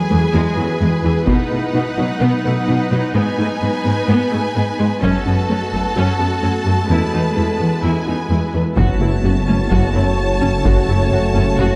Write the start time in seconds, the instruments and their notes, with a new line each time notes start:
Already playing: ambient pad G#3 B3 E4 B4, viola section G#4, violin section B4 G#5
0.10 cello section E2, viola section E3, synth arpeggio sound G#3
0.34 cello section E2, synth arpeggio sound E3, viola section G#3
0.57 cello section E2, viola section F#3, synth arpeggio sound E4
0.81 cello section E2, synth arpeggio sound G#3, viola section G#3
1.04 cello section E2, viola section E3, synth arpeggio sound E4
1.27 cello section B2, ambient pad F#3 D#4, synth arpeggio sound B3, viola section B3 D#4, violin section F#5, taiko
1.51 cello section B2, viola section A3, synth arpeggio sound F#4
1.75 cello section B2, viola section B3, synth arpeggio sound D#4
1.98 cello section B2, viola section F#3, synth arpeggio sound D#4
2.21 cello section B2, synth arpeggio sound B3, viola section B3
2.45 cello section B2, viola section A3, synth arpeggio sound B4
2.68 cello section B2, viola section B3, synth arpeggio sound D#4
2.91 cello section B2, viola section F#3, synth arpeggio sound B4
3.14 cello section G#2, synth arpeggio sound G#3, ambient pad G#3, viola section B3, violin section B4 G#5
3.38 cello section G#2, viola section A3, synth arpeggio sound D#4
3.61 cello section G#2, viola section B3, synth arpeggio sound B3
3.85 cello section G#2, viola section G#3, synth arpeggio sound B3
4.09 cello section G#2, synth arpeggio sound G#3, viola section B3
4.32 cello section G#2, viola section A3, synth arpeggio sound G#4
4.55 cello section G#2, viola section B3, synth arpeggio sound B3
4.79 cello section G#2, viola section G#3, synth arpeggio sound G#4
5.02 cello section F#2, synth arpeggio sound F#3, ambient pad A3 C#4 F#4 A4, viola section C#4 F#4, violin section A4 A5, taiko
5.26 cello section F#2, viola section B3, synth arpeggio sound C#4
5.49 cello section F#2, synth arpeggio sound A3, viola section C#4
5.73 cello section F#2, synth arpeggio sound A3, viola section A3, taiko
5.96 cello section F#2, synth arpeggio sound F#3, viola section C#4
6.20 cello section F#2, viola section B3, synth arpeggio sound F#4
6.43 cello section F#2, synth arpeggio sound A3, viola section C#4
6.67 cello section F#2, viola section A3, synth arpeggio sound F#4
6.90 cello section E2, synth arpeggio sound E3, viola section G#3 E4, ambient pad G#3 B3 E4 B4, violin section B4
7.13 cello section E2, synth arpeggio sound B3, viola section D#4
7.37 cello section E2, synth arpeggio sound G#3, viola section E4
7.60 cello section E2, synth arpeggio sound G#3, viola section B3
7.84 cello section E2, synth arpeggio sound E3, viola section E4, violin section G#5
8.07 cello section E2, viola section D#4, synth arpeggio sound E4
8.30 cello section E2, synth arpeggio sound G#3, viola section E4
8.54 cello section E2, viola section B3, synth arpeggio sound E4
8.77 detuned saw bass F#1, double bass section F#1, cello section F#2, trombone section C#3 A3, synth arpeggio sound F#3, ambient pad F#3 A3 C#4 C#5, french horn section C#4 F#4, viola section F#4, violin section C#5 A5, taiko
9.01 double bass section F#1, cello section F#2, viola section E4, synth arpeggio sound F#4
9.25 double bass section F#1, cello section F#2, viola section F#4, synth arpeggio sound F#4
9.48 double bass section F#1, cello section F#2, synth arpeggio sound A3, viola section C#4
9.71 double bass section F#1, cello section F#2, synth arpeggio sound F#3, viola section F#4, taiko
9.95 double bass section F#1, cello section F#2, synth arpeggio sound A3, viola section E4
10.41 double bass section F#1, cello section F#2, viola section C#4, synth arpeggio sound C#4
10.65 double bass section F#1, cello section F#2, synth arpeggio sound F#3, viola section F#4, taiko
10.88 double bass section F#1, cello section F#2, viola section E4, synth arpeggio sound F#4
11.12 double bass section F#1, cello section F#2, viola section F#4, synth arpeggio sound F#4
11.35 double bass section F#1, cello section F#2, synth arpeggio sound A3, viola section C#4
11.59 double bass section F#1, cello section F#2, synth arpeggio sound F#3, viola section F#4, taiko